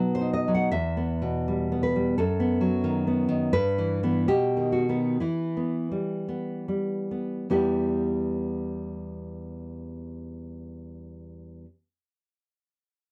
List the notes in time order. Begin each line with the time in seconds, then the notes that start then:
Already playing: B2 F#3 B3 D#4 B4
0.15 C5
0.21 D#4
0.33 D#5
0.48 F#3
0.54 F#5
0.71 E2 E5
0.97 B3
1.22 B2
1.48 G3
1.72 B3
1.83 B4
1.96 G3
2.18 F#2 A4
2.40 B3
2.61 F#3
2.84 D#3
3.07 B3
3.29 D#3
3.53 G2 B4
3.78 E3
4.03 E3 B3
4.28 B2 G4
4.57 D#3
4.72 F#4
4.89 D#3 B3
5.20 E3 E4
5.57 B3
5.91 G3
6.28 B3
6.68 G3
7.11 B3
7.50 E2 G3 B3 E4 G4